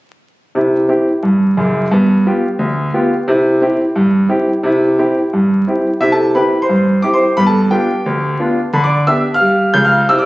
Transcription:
0.55 0.84 C3 medium
0.55 0.75 E4 soft
0.88 1.07 C4 soft
0.88 1.08 E4 soft
0.88 1.08 G4 soft
1.23 1.52 G2 medium
1.57 1.84 F#1 medium
1.57 1.84 F#2 medium
1.91 2.20 G2 medium
1.91 2.12 B3 soft
2.26 2.45 B3 soft
2.26 2.45 F4 soft
2.26 2.45 G4 medium
2.59 2.88 D2 medium
2.94 3.13 B3 soft
2.94 3.13 F4 soft
2.94 3.13 G4 soft
3.28 3.56 C3 medium
3.28 3.48 E4 medium
3.61 3.80 C4 soft
3.61 3.81 E4 soft
3.61 3.81 G4 medium
3.96 4.25 G2 medium
4.29 4.48 C4 soft
4.29 4.48 E4 soft
4.29 4.48 G4 medium
4.63 4.92 C3 medium
4.63 4.84 E4 medium
4.98 5.17 C4 soft
4.98 5.17 E4 soft
4.98 5.18 G4 soft
5.33 5.62 G2 medium
5.67 5.86 C4 soft
5.67 5.86 E4 soft
5.67 5.87 G4 soft
6.01 6.30 C3 medium
6.01 6.21 E4 soft
6.01 6.11 E5 medium
6.12 6.34 A4 soft
6.12 6.35 A5 medium
6.35 6.54 C4 soft
6.35 6.54 E4 soft
6.35 6.54 G4 soft
6.35 6.61 B4 medium
6.35 6.62 B5 medium
6.62 7.01 C5 soft
6.62 7.03 C6 medium
6.69 6.98 G2 medium
7.02 7.22 C4 soft
7.02 7.22 E4 soft
7.02 7.22 G4 soft
7.02 7.12 D6 medium
7.14 7.36 C5 medium
7.14 7.37 C6 medium
7.37 7.66 G2 medium
7.37 7.57 B3 soft
7.37 7.47 B5 medium
7.47 7.70 A4 soft
7.47 7.71 A5 medium
7.71 7.90 B3 soft
7.71 7.90 D4 soft
7.71 7.90 F4 soft
7.71 8.56 G4 medium
7.71 8.59 G5 medium
8.06 8.34 D2 medium
8.39 8.58 B3 soft
8.39 8.58 D4 soft
8.39 8.58 F4 soft
8.73 9.02 D3 medium
8.73 8.83 B5 medium
8.84 9.06 D5 medium
8.84 9.07 D6 medium
9.07 9.26 B3 soft
9.07 9.27 D4 soft
9.07 9.26 G4 soft
9.07 9.33 E5 medium
9.07 9.34 E6 medium
9.34 9.73 F5 medium
9.34 9.75 F6 medium
9.40 9.70 G3 medium
9.74 10.02 C#2 medium
9.74 10.02 C#3 medium
9.74 9.84 G6 medium
9.85 10.08 F5 medium
9.85 10.09 F6 medium
10.09 10.26 C3 medium
10.09 10.26 E4 medium
10.09 10.19 E6 loud
10.18 10.26 D5 medium
10.18 10.26 D6 medium

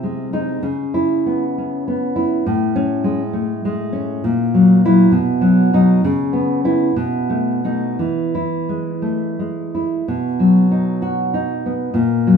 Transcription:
0.00 0.59 C3 medium
0.00 0.32 G#3 soft
0.33 0.60 G#3 soft
0.33 0.61 D#4 medium
0.63 2.40 C#3 medium
0.94 1.43 E4 medium
1.26 1.86 B3 soft
1.58 2.46 C#4 soft
1.88 2.46 B3 soft
2.16 2.45 E4 soft
2.46 4.19 A2 medium
2.76 3.22 C#4 medium
3.04 3.64 G#3 medium
3.33 4.23 A3 soft
3.65 4.24 G#3 medium
3.93 4.23 C#4 medium
4.24 5.11 A#2 medium
4.54 4.84 F#3 medium
4.85 5.11 F#3 medium
4.85 5.11 E4 medium
5.12 6.00 B2 medium
5.41 5.72 F#3 medium
5.73 6.01 F#3 medium
5.73 6.01 D#4 medium
6.04 6.96 C#3 medium
6.33 6.63 B3 medium
6.64 6.94 B3 soft
6.64 6.94 E4 medium
6.96 7.97 B2 medium
7.30 7.63 A3 soft
7.64 7.97 A3 soft
7.64 7.97 D#4 medium
7.99 10.02 E3 medium
8.35 8.90 E4 medium
8.69 9.38 G#3 soft
9.02 10.06 A3 soft
9.39 10.08 G#3 soft
9.75 10.08 E4 soft
10.08 11.92 B2 medium
10.40 11.33 F#3 soft
10.71 11.33 D#4 soft
11.02 11.52 F#4 medium
11.34 11.96 D#4 medium
11.66 11.96 B3 soft
11.94 12.37 A#2 medium
12.27 12.37 F#3 medium

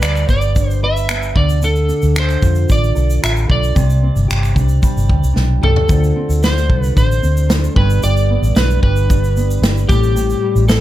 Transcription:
0.00 0.24 D2 medium
0.00 1.35 G3 medium
0.00 0.55 D4 medium
0.00 0.82 B4 medium
0.00 0.27 D5 medium
0.00 finger snap loud
0.00 shaker medium
0.15 finger snap soft
0.15 shaker soft
0.28 1.31 G1 medium
0.28 1.08 B3 medium
0.28 0.79 D5 medium
0.28 kick medium
0.28 shaker soft
0.41 shaker soft
0.55 1.88 D4 medium
0.55 kick medium
0.55 shaker medium
0.70 shaker soft
0.83 1.41 B4 medium
0.83 1.38 E5 loud
0.97 shaker medium
1.09 1.41 B3 medium
1.09 finger snap loud
1.09 shaker medium
1.22 shaker soft
1.35 1.90 D2 medium
1.35 1.62 D3 medium
1.35 1.64 D5 medium
1.35 kick medium
1.49 shaker soft
1.62 3.78 D3 medium
1.62 2.18 A4 medium
1.62 shaker medium
1.75 shaker soft
1.89 2.69 D4 medium
1.89 shaker medium
2.02 2.35 D2 medium
2.02 shaker soft
2.16 2.94 A4 medium
2.16 2.72 C5 medium
2.16 finger snap loud
2.16 shaker medium
2.29 finger snap soft
2.29 shaker soft
2.42 2.64 F2 loud
2.42 3.21 F4 medium
2.42 kick medium
2.42 shaker soft
2.55 shaker soft
2.69 2.91 A1 medium
2.69 4.02 D4 medium
2.69 3.20 D5 medium
2.69 kick medium
2.69 shaker medium
2.84 shaker soft
2.95 3.18 B1 medium
2.95 3.47 A4 medium
2.95 shaker soft
3.10 shaker medium
3.22 3.45 A1 medium
3.22 3.81 F4 medium
3.22 3.31 E5 medium
3.22 finger snap loud
3.22 shaker medium
3.36 shaker soft
3.48 3.71 B1 medium
3.48 3.81 A4 medium
3.48 5.33 D5 medium
3.48 kick medium
3.63 shaker soft
3.75 4.09 C2 loud
3.75 5.89 C3 medium
3.75 kick loud
3.75 shaker medium
3.90 shaker soft
4.03 5.95 C4 medium
4.16 4.27 G1 medium
4.16 shaker soft
4.28 4.52 G1 medium
4.28 5.07 G4 medium
4.28 finger snap loud
4.28 shaker medium
4.43 finger snap soft
4.43 shaker soft
4.55 4.78 C2 medium
4.55 5.33 D4 medium
4.55 kick medium
4.55 shaker soft
4.69 shaker soft
4.82 5.94 G3 medium
4.82 kick medium
4.82 shaker medium
4.96 5.07 G1 medium
4.96 shaker soft
5.09 5.20 D2 medium
5.09 5.60 G4 medium
5.09 kick medium
5.23 5.34 C2 medium
5.23 shaker medium
5.34 5.58 B1 medium
5.34 6.19 D4 medium
5.34 snare medium
5.61 5.74 C2 medium
5.61 5.89 G4 medium
5.61 6.46 A4 medium
5.61 mid tom medium
5.76 floor tom medium
5.88 6.11 D2 loud
5.88 9.39 D3 medium
5.88 7.71 A3 medium
5.88 7.72 D4 medium
5.88 7.72 F4 medium
5.88 6.68 A4 medium
5.88 7.73 C5 medium
5.88 kick loud
5.88 shaker medium
6.03 shaker soft
6.16 7.21 C4 medium
6.29 6.71 D2 medium
6.29 shaker medium
6.42 6.95 D4 medium
6.42 6.80 C5 medium
6.42 snare loud
6.42 shaker medium
6.57 snare soft
6.57 shaker soft
6.69 6.91 C2 medium
6.69 7.48 A4 medium
6.69 kick medium
6.80 6.93 B4 medium
6.80 shaker soft
6.95 7.18 A1 medium
6.95 8.55 D4 medium
6.95 7.73 C5 medium
6.95 kick medium
6.95 shaker medium
7.12 shaker soft
7.22 7.67 D2 medium
7.22 7.81 C4 medium
7.22 shaker soft
7.37 shaker medium
7.49 7.81 A4 medium
7.49 snare loud
7.49 shaker medium
7.64 shaker soft
7.74 7.98 G1 medium
7.74 8.01 G2 medium
7.74 9.84 G3 medium
7.74 9.85 B3 medium
7.74 9.86 D4 medium
7.74 8.01 B4 medium
7.74 kick loud
7.79 9.86 B4 medium
7.90 shaker soft
8.03 8.36 G1 loud
8.03 9.89 G2 medium
8.03 8.83 G4 medium
8.03 8.58 D5 medium
8.03 shaker medium
8.17 shaker soft
8.30 9.35 B3 medium
8.42 8.53 A1 medium
8.42 shaker medium
8.56 8.77 B1 medium
8.56 9.08 D4 medium
8.56 8.82 B4 medium
8.56 snare loud
8.56 shaker medium
8.70 shaker soft
8.83 9.59 G1 loud
8.83 9.62 G4 medium
8.83 9.93 B4 medium
8.83 kick medium
8.96 shaker soft
9.10 9.95 D4 medium
9.10 kick medium
9.10 shaker medium
9.24 shaker soft
9.37 9.95 B3 medium
9.37 shaker soft
9.51 shaker medium
9.62 9.84 G1 loud
9.62 10.15 G4 medium
9.62 snare loud
9.62 shaker medium
9.77 shaker soft
9.88 10.33 A1 medium
9.88 10.14 A2 medium
9.88 10.80 G3 medium
9.88 10.80 C4 medium
9.88 10.80 E4 medium
9.88 10.68 G4 medium
9.88 10.80 A4 medium
9.88 kick loud
9.88 shaker medium
10.03 shaker soft
10.15 10.80 A2 medium
10.15 10.80 G4 medium
10.15 shaker medium
10.30 shaker soft
10.43 10.80 G3 medium
10.55 10.80 A1 medium
10.55 shaker medium
10.68 10.80 C4 medium
10.68 10.80 A4 medium
10.68 snare loud
10.68 shaker medium

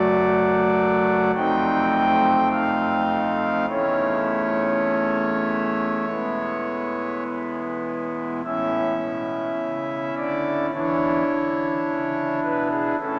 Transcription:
0.00 1.31 F#1 medium
0.00 1.31 F#2 medium
0.00 1.31 F#3 medium
0.00 1.31 A3 medium
0.00 1.31 F#4 medium
0.00 1.31 D5 loud
1.35 3.65 F1 medium
1.35 3.65 F2 medium
1.35 3.65 A3 medium
1.35 3.65 C4 medium
1.35 3.65 D#4 medium
1.35 2.48 G5 loud
2.52 3.66 F5 medium
3.69 6.05 E1 medium
3.69 6.05 E2 medium
3.69 6.05 A3 soft
3.69 6.05 C#4 soft
3.69 6.05 E4 soft
3.69 7.24 C#5 loud
6.07 8.41 E1 medium
6.07 8.42 E2 medium
6.07 8.41 G#3 soft
6.07 8.41 B3 medium
6.07 8.41 E4 soft
8.45 8.95 A1 medium
8.45 8.95 A2 medium
8.45 10.71 C#4 soft
8.45 10.71 E4 medium
8.45 10.14 E5 loud
9.02 9.52 B2 medium
9.59 10.09 C#3 medium
10.17 10.66 D3 medium
10.17 10.66 D5 loud
10.74 11.23 E2 medium
10.74 11.23 E3 medium
10.74 12.97 D4 soft
10.74 12.96 E4 medium
10.74 12.41 C#5 loud
11.32 11.80 D3 medium
11.88 12.36 C#3 medium
12.43 12.92 B2 medium
12.43 12.68 B4 medium
12.70 12.95 G#4 medium
13.00 13.19 A1 medium
13.00 13.19 A2 medium
13.00 13.19 C#4 soft
13.00 13.19 E4 medium
13.00 13.19 A4 loud

